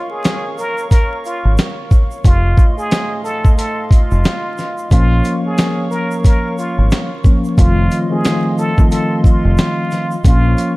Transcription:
0.00 2.22 A#4 medium
0.00 2.22 C#5 medium
0.00 2.20 F5 medium
0.00 2.22 C#6 loud
0.10 0.55 G#4 medium
0.25 snare loud
0.25 snare medium
0.25 closed hi-hat medium
0.25 shaker medium
0.58 0.88 A#4 medium
0.58 shaker medium
0.58 shaker soft
0.78 shaker medium
0.90 1.21 A#4 medium
0.90 kick loud
0.90 closed hi-hat medium
0.90 shaker medium
1.25 1.55 F4 medium
1.25 shaker medium
1.45 1.56 G#1 medium
1.58 snare loud
1.58 snare medium
1.58 closed hi-hat medium
1.58 shaker medium
1.91 kick loud
1.91 shaker soft
1.91 shaker medium
2.11 shaker soft
2.25 2.54 F1 loud
2.25 4.89 A3 medium
2.25 2.75 F4 medium
2.25 4.89 D#5 medium
2.25 4.89 F5 medium
2.25 4.89 C6 medium
2.25 kick loud
2.25 closed hi-hat medium
2.25 shaker medium
2.57 kick loud
2.57 shaker medium
2.77 3.21 G#4 medium
2.77 shaker soft
2.91 snare loud
2.91 snare medium
2.91 closed hi-hat medium
2.91 shaker medium
3.24 3.54 A4 medium
3.24 shaker medium
3.24 shaker soft
3.45 kick loud
3.45 shaker medium
3.57 3.87 A4 medium
3.57 closed hi-hat medium
3.57 shaker medium
3.91 4.88 F4 medium
3.91 kick loud
3.91 closed hi-hat medium
3.91 shaker medium
4.11 4.23 F1 medium
4.11 shaker medium
4.24 snare loud
4.24 snare medium
4.24 closed hi-hat medium
4.24 shaker medium
4.58 snare soft
4.58 shaker soft
4.58 shaker medium
4.78 shaker soft
4.90 5.20 A#1 loud
4.90 7.08 F3 loud
4.90 7.09 A#3 medium
4.90 7.10 C#4 loud
4.90 5.42 F4 loud
4.90 7.55 A#4 medium
4.90 7.55 C#5 medium
4.90 7.55 F5 medium
4.90 7.55 C#6 loud
4.90 kick loud
4.90 closed hi-hat medium
4.90 shaker medium
5.24 closed hi-hat medium
5.24 shaker medium
5.46 5.89 G#4 medium
5.58 snare loud
5.58 snare medium
5.58 closed hi-hat medium
5.58 shaker medium
5.91 6.21 A#4 medium
5.91 shaker medium
5.91 shaker soft
6.11 shaker medium
6.24 6.55 A#4 medium
6.24 kick loud
6.24 closed hi-hat medium
6.24 shaker medium
6.58 6.88 F4 medium
6.58 shaker medium
6.78 6.90 G#1 medium
6.91 snare loud
6.91 snare medium
6.91 closed hi-hat medium
6.91 shaker medium
7.24 7.55 F3 medium
7.24 7.56 A#3 medium
7.24 7.56 C#4 medium
7.24 kick loud
7.24 shaker soft
7.24 shaker medium
7.44 shaker soft
7.57 7.87 F1 loud
7.57 8.06 D#3 medium
7.57 8.06 F3 medium
7.57 10.22 A3 medium
7.57 8.06 A3 medium
7.57 8.07 C4 medium
7.57 8.08 F4 loud
7.57 8.07 F4 loud
7.57 10.22 D#5 medium
7.57 10.77 F5 medium
7.57 10.22 C6 medium
7.57 kick loud
7.57 closed hi-hat medium
7.57 shaker medium
7.91 closed hi-hat soft
7.91 shaker medium
7.91 shaker soft
8.10 8.71 D#3 medium
8.10 8.71 F3 medium
8.10 8.71 A3 medium
8.10 8.72 C4 medium
8.10 8.72 F4 loud
8.10 8.55 G#4 medium
8.25 snare loud
8.25 snare medium
8.25 closed hi-hat medium
8.25 shaker medium
8.58 8.88 A4 medium
8.58 shaker medium
8.58 shaker soft
8.77 10.15 D#3 loud
8.77 10.15 F3 medium
8.77 10.15 A3 medium
8.77 10.16 C4 medium
8.77 10.16 F4 loud
8.77 kick medium
8.77 shaker medium
8.90 9.21 A4 medium
8.90 closed hi-hat medium
8.90 shaker medium
9.24 10.20 F4 medium
9.24 kick loud
9.24 shaker medium
9.45 9.56 F1 medium
9.58 snare loud
9.58 snare medium
9.58 closed hi-hat medium
9.58 shaker medium
9.91 snare soft
9.91 shaker medium
10.11 shaker soft
10.24 10.54 A#1 loud
10.24 10.77 F3 loud
10.24 10.77 A#3 medium
10.24 10.77 C#4 loud
10.24 10.75 F4 loud
10.24 10.77 A#4 medium
10.24 10.77 C#5 medium
10.24 10.77 C#6 medium
10.24 kick loud
10.24 closed hi-hat medium
10.24 shaker medium
10.58 closed hi-hat medium
10.58 shaker medium

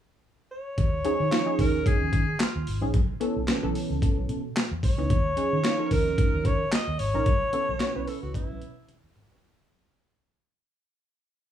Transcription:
0.52 1.62 C#5 loud
0.78 0.98 D#2 loud
0.78 kick loud
0.78 closed hi-hat medium
1.04 1.25 F3 loud
1.04 1.25 C#4 medium
1.04 1.25 D#4 medium
1.04 1.25 G#4 loud
1.04 closed hi-hat medium
1.20 1.29 D#3 medium
1.31 1.42 F3 loud
1.31 1.42 C#4 medium
1.31 1.43 D#4 medium
1.31 1.43 F4 loud
1.31 snare loud
1.31 clap medium
1.31 closed hi-hat medium
1.46 2.25 F3 medium
1.46 2.25 C#4 medium
1.46 2.25 D#4 medium
1.46 2.25 G#4 loud
1.59 1.79 D#2 medium
1.59 1.89 A#4 loud
1.59 kick medium
1.59 open hi-hat medium
1.86 2.43 G#4 loud
1.86 kick loud
1.86 closed hi-hat medium
2.01 2.10 D#2 loud
2.13 2.33 D#3 medium
2.13 kick medium
2.13 closed hi-hat medium
2.40 2.83 F4 medium
2.40 snare loud
2.40 clap loud
2.40 closed hi-hat loud
2.56 2.64 D#2 medium
2.67 2.79 G#1 medium
2.67 open hi-hat medium
2.81 2.91 A#1 loud
2.81 2.93 F3 medium
2.81 2.94 C#4 medium
2.81 2.94 D#4 medium
2.81 2.94 G#4 medium
2.94 3.05 B1 loud
2.94 kick loud
2.94 closed hi-hat medium
3.20 3.41 E3 loud
3.20 3.41 B3 medium
3.20 3.41 C#4 medium
3.20 3.42 A4 loud
3.20 closed hi-hat medium
3.36 3.45 B1 medium
3.47 3.59 E3 medium
3.47 3.59 B3 medium
3.47 3.59 C#4 medium
3.47 3.59 A4 loud
3.47 snare loud
3.47 clap medium
3.47 closed hi-hat medium
3.63 3.72 B1 medium
3.63 4.41 E3 loud
3.63 4.42 B3 medium
3.63 4.42 C#4 medium
3.63 4.42 A4 loud
3.75 open hi-hat medium
3.90 3.99 C#2 medium
4.02 kick loud
4.02 closed hi-hat medium
4.17 4.26 B1 medium
4.29 4.49 B2 medium
4.29 closed hi-hat medium
4.56 snare loud
4.56 clap medium
4.56 closed hi-hat loud
4.71 4.80 E2 medium
4.83 4.95 B1 medium
4.83 5.94 C#5 loud
4.83 kick medium
4.83 open hi-hat medium
4.98 5.07 C#2 medium
4.98 5.10 E3 medium
4.98 5.10 B3 medium
4.98 5.10 C#4 medium
4.98 5.10 D#4 medium
5.10 5.31 D#2 loud
5.10 kick loud
5.10 closed hi-hat medium
5.37 5.57 F3 medium
5.37 5.58 C#4 medium
5.37 5.58 D#4 medium
5.37 5.58 G#4 medium
5.37 closed hi-hat medium
5.53 5.61 D#3 medium
5.64 5.75 F3 medium
5.64 5.75 C#4 medium
5.64 5.75 D#4 medium
5.64 5.75 F4 loud
5.64 snare loud
5.64 clap medium
5.64 closed hi-hat medium
5.79 6.58 F3 medium
5.79 6.58 C#4 medium
5.79 6.58 D#4 medium
5.79 5.85 A4 medium
5.86 6.61 A#4 loud
5.91 6.11 D#2 medium
5.91 6.47 A#4 loud
5.91 kick medium
5.91 open hi-hat medium
6.18 kick loud
6.18 closed hi-hat medium
6.33 6.46 D#2 medium
6.45 6.65 D#3 medium
6.45 6.74 C#5 loud
6.45 kick medium
6.45 closed hi-hat medium
6.72 7.01 D#5 loud
6.72 snare loud
6.72 clap loud
6.72 closed hi-hat loud
6.87 6.96 D#2 medium
6.99 7.11 G#1 medium
6.99 8.09 C#5 loud
6.99 open hi-hat medium
7.14 7.24 A#1 medium
7.14 7.26 F3 medium
7.14 7.26 C#4 medium
7.14 7.26 D#4 medium
7.14 7.26 A#4 medium
7.26 7.38 B1 loud
7.26 kick loud
7.26 closed hi-hat medium
7.53 7.73 E3 medium
7.53 7.74 B3 medium
7.53 7.74 C#4 medium
7.53 7.74 A4 medium
7.53 closed hi-hat medium
7.69 7.78 B1 medium
7.80 7.91 E3 medium
7.80 7.91 B3 medium
7.80 7.91 C#4 medium
7.80 7.91 F#4 medium
7.80 snare loud
7.80 clap medium
7.80 closed hi-hat medium
7.95 8.05 B1 medium
7.95 8.74 E3 medium
7.95 8.74 B3 medium
7.95 8.74 C#4 medium
7.95 8.74 B4 medium
8.07 8.22 A4 medium
8.07 open hi-hat medium
8.23 8.32 C#2 medium
8.23 8.34 F#4 medium
8.34 9.12 E4 medium
8.34 kick loud
8.34 closed hi-hat medium
8.50 8.59 B1 loud
8.62 8.82 B2 medium
8.62 closed hi-hat medium
8.89 closed hi-hat loud
8.89 high tom medium
9.04 9.12 E2 medium
9.15 9.27 G#1 medium
9.15 closed hi-hat medium
9.15 mid tom medium
9.30 9.42 E3 medium
9.30 9.42 B3 medium
9.30 9.42 C#4 medium
9.30 9.42 F#4 loud
9.30 floor tom medium

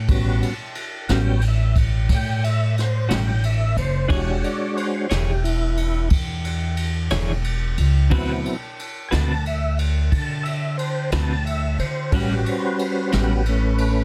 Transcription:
0.08 0.39 A1 loud
0.08 0.53 G3 medium
0.08 0.53 B3 soft
0.08 0.53 C#4 soft
0.08 0.54 F#4 medium
0.08 kick loud
0.08 ride medium
0.43 ride medium
0.75 ride medium
1.08 2.05 A1 loud
1.08 1.31 A2 medium
1.08 1.40 F#3 medium
1.08 1.40 G3 soft
1.08 1.30 G3 medium
1.08 1.30 C#4 medium
1.08 1.30 F#4 medium
1.08 1.12 F#5 medium
1.08 snare loud
1.08 ride medium
1.13 1.41 B3 soft
1.13 1.41 C#4 soft
1.13 1.44 G5 medium
1.41 ride medium
1.48 1.78 E5 medium
1.76 kick medium
1.76 ride medium
2.09 3.06 A2 medium
2.09 kick medium
2.09 snare soft
2.09 ride medium
2.14 2.44 G5 medium
2.44 2.76 E5 medium
2.44 ride medium
2.78 3.11 C5 medium
2.78 snare soft
2.78 ride medium
3.09 3.73 A1 medium
3.09 3.30 A2 medium
3.09 3.30 G3 medium
3.09 3.29 C#4 medium
3.09 3.29 F#4 medium
3.09 snare loud
3.09 ride medium
3.14 3.45 G5 medium
3.43 3.77 E5 medium
3.43 ride medium
3.76 4.07 F#1 medium
3.76 4.10 C5 medium
3.76 ride medium
4.08 4.41 E1 medium
4.08 4.29 E3 medium
4.08 5.06 G#3 medium
4.08 4.29 D4 medium
4.08 4.30 G#4 medium
4.08 4.30 C#5 medium
4.08 kick loud
4.08 ride medium
4.12 5.08 D4 soft
4.12 5.08 F#4 medium
4.12 4.44 G4 medium
4.12 5.08 C#5 soft
4.44 4.77 D5 medium
4.44 ride medium
4.77 5.09 C5 medium
4.77 ride medium
5.10 6.07 E1 loud
5.10 5.31 E3 medium
5.10 5.31 D4 medium
5.10 5.43 G4 medium
5.10 5.31 G#4 medium
5.10 5.30 C#5 medium
5.10 snare loud
5.10 ride medium
5.44 6.09 E4 loud
5.44 ride medium
5.77 ride medium
6.10 7.07 E2 medium
6.10 kick medium
6.10 ride medium
6.45 ride medium
6.77 ride medium
7.10 7.74 E1 medium
7.10 7.32 E3 medium
7.10 7.32 D4 medium
7.10 7.31 G#4 medium
7.10 7.31 C#5 medium
7.10 snare loud
7.10 ride medium
7.44 ride medium
7.77 8.09 C#2 medium
7.77 ride medium
8.10 8.42 D2 medium
8.10 8.31 D3 medium
8.10 8.56 F#3 medium
8.10 8.56 B3 soft
8.10 8.31 C4 medium
8.10 8.56 C4 soft
8.10 8.57 E4 medium
8.10 8.31 F#4 medium
8.10 8.32 B4 medium
8.10 kick loud
8.10 ride medium
8.45 ride medium
8.79 ride medium
9.09 10.08 D2 loud
9.09 9.32 C4 medium
9.09 9.32 F#4 medium
9.09 9.31 B4 medium
9.09 9.12 G#5 medium
9.09 ride medium
9.13 9.32 D3 medium
9.13 9.45 A5 loud
9.13 snare medium
9.46 9.79 E5 medium
9.46 ride medium
9.79 ride medium
10.12 11.08 D3 loud
10.12 10.44 A5 medium
10.12 kick medium
10.12 ride medium
10.43 10.77 E5 medium
10.43 ride medium
10.78 11.10 C5 medium
10.78 ride medium
11.12 11.75 D2 loud
11.12 11.33 D3 soft
11.12 11.33 C4 medium
11.12 11.32 F#4 medium
11.12 11.32 B4 medium
11.12 11.44 A5 medium
11.12 snare loud
11.12 ride medium
11.45 11.78 E5 medium
11.45 ride medium
11.79 12.09 D3 medium
11.79 12.11 C5 medium
11.79 ride medium
12.12 12.43 A1 loud
12.12 12.32 A2 medium
12.12 13.12 G3 medium
12.12 12.33 G3 medium
12.12 13.13 C#4 medium
12.12 12.33 C#4 medium
12.12 13.13 F#4 medium
12.12 12.33 F#4 medium
12.12 12.46 G4 medium
12.12 14.04 B4 soft
12.12 kick loud
12.12 ride medium
12.46 12.80 C5 medium
12.46 ride medium
12.79 13.12 C5 loud
12.79 ride medium
13.12 14.04 A1 loud
13.12 13.33 A2 medium
13.12 13.32 G3 medium
13.12 13.42 G3 soft
13.12 13.43 B3 soft
13.12 13.32 C#4 medium
13.12 13.43 C#4 soft
13.12 13.32 F#4 medium
13.12 13.43 F#4 medium
13.12 13.46 G4 medium
13.12 snare loud
13.12 ride medium
13.46 14.04 A3 medium
13.46 14.04 C#4 medium
13.46 ride medium
13.78 ride medium

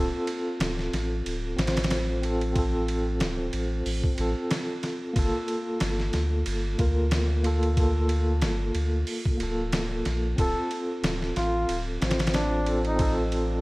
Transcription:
0.00 0.11 D1 loud
0.00 1.53 C4 medium
0.00 1.55 F4 medium
0.00 1.56 A4 medium
0.27 ride medium
0.60 0.89 D1 loud
0.60 snare loud
0.60 ride medium
0.79 snare soft
0.93 1.22 A1 medium
0.93 snare medium
0.93 ride medium
1.26 1.55 D1 medium
1.26 ride medium
1.56 3.22 A1 medium
1.56 2.19 C4 medium
1.56 2.20 F4 medium
1.56 2.21 C5 medium
1.56 snare medium
1.56 ride medium
1.67 snare medium
1.67 ride medium
1.77 snare medium
1.77 ride medium
1.84 snare medium
1.84 ride medium
1.90 snare loud
1.90 ride medium
2.22 2.52 C4 medium
2.22 2.52 F4 medium
2.22 2.53 A4 medium
2.22 ride medium
2.41 ride soft
2.53 4.14 C4 medium
2.53 4.15 F4 medium
2.53 kick loud
2.53 ride medium
2.59 4.17 A4 medium
2.88 ride medium
3.20 3.50 D1 loud
3.20 snare loud
3.20 ride medium
3.53 3.82 A1 medium
3.53 ride medium
3.86 4.02 A1 medium
3.86 open hi-hat medium
4.04 kick medium
4.15 4.35 A1 loud
4.15 5.11 C4 medium
4.15 5.13 F4 medium
4.15 ride medium
4.21 5.14 A4 medium
4.51 snare loud
4.51 ride medium
4.83 snare soft
4.83 ride medium
5.13 5.32 G1 loud
5.13 6.75 A#3 medium
5.13 6.76 F4 medium
5.13 kick loud
5.13 ride medium
5.19 6.77 A4 loud
5.48 ride medium
5.80 6.11 G1 loud
5.80 snare medium
5.80 ride medium
6.00 snare soft
6.13 6.43 D2 medium
6.13 snare medium
6.13 ride medium
6.46 6.76 G1 loud
6.46 ride medium
6.78 8.43 D2 medium
6.78 7.41 A#3 medium
6.78 7.42 F4 medium
6.78 7.42 A#4 medium
6.78 kick medium
6.78 ride medium
7.11 snare loud
7.11 ride medium
7.43 7.73 A#3 medium
7.43 7.74 F4 medium
7.43 7.75 A4 medium
7.43 ride medium
7.63 ride soft
7.74 9.35 A#3 medium
7.74 9.37 F4 medium
7.74 kick loud
7.74 ride medium
7.80 9.38 A4 medium
8.09 ride medium
8.42 8.71 G1 loud
8.42 snare loud
8.42 ride medium
8.75 9.04 D2 medium
8.75 ride medium
9.07 open hi-hat medium
9.25 kick medium
9.37 10.03 D1 loud
9.37 10.33 A#3 medium
9.37 10.35 F4 medium
9.37 ride medium
9.43 10.36 A4 medium
9.72 snare loud
9.72 ride medium
10.05 10.35 A#1 medium
10.05 snare soft
10.05 ride medium
10.36 10.54 D1 loud
10.36 11.97 C4 medium
10.36 11.98 F4 medium
10.36 10.84 A4 medium
10.36 kick loud
10.36 ride medium
10.42 12.00 A4 medium
10.71 ride medium
11.03 11.32 D1 loud
11.03 snare loud
11.03 ride medium
11.22 snare soft
11.36 11.65 A1 medium
11.36 11.82 F4 medium
11.36 snare medium
11.36 ride medium
11.69 11.98 D1 medium
11.69 ride medium
12.01 13.61 A1 medium
12.01 12.63 C4 medium
12.01 12.64 F4 medium
12.01 12.64 C5 medium
12.01 snare medium
12.01 ride medium
12.11 snare medium
12.11 ride medium
12.19 snare medium
12.19 ride medium
12.27 snare medium
12.27 ride medium
12.34 12.79 D4 medium
12.34 snare loud
12.34 ride medium
12.65 12.95 C4 medium
12.65 12.96 F4 medium
12.65 12.97 A4 medium
12.65 ride medium
12.85 13.14 D#4 medium
12.85 ride soft
12.96 13.61 C4 medium
12.96 13.61 F4 medium
12.96 kick loud
12.96 ride medium
13.01 13.61 A4 medium
13.32 ride medium

